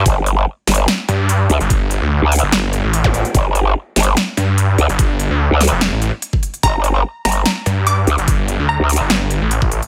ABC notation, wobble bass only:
X:1
M:4/4
L:1/16
Q:"Swing 16ths" 1/4=146
K:Gm
V:1 name="Wobble bass" clef=bass
G,,,4 z2 G,,,2 z6 D,, z | z4 z D,,2 z8 z | G,,,4 z2 G,,,2 z6 D,, z | z4 z D,,2 z8 z |
G,,,4 z2 G,,,2 z6 D,, z | z4 z D,,2 z8 z |]